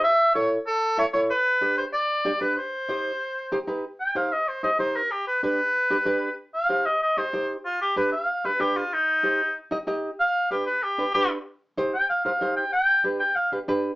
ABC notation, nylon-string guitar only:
X:1
M:4/4
L:1/8
Q:1/4=189
K:Cm
V:1 name="Nylon-string guitar"
z2 [=E=A^c] z3 [EA=e] [EAc] | z2 [DG=B] z3 [DGd] [DGB] | z2 [EGc] z3 [EGc] [EG=B] | z2 [EGc] z2 [EGc] [EGc] z |
z2 [DG=B] z2 [DGB] [DGB] z | z2 [EGc] z2 [EGe] [EGc] z | z2 [DG=B] z2 [DGB] [DGB] z | z2 [EGc] z2 [EGe] [EGe] z |
z2 [DG=B] z2 [DGB] [DGB] z | z2 [EGc] z2 [EGc] [EGc] z | z2 [DG=B] z2 [DGB] [DGB] z |]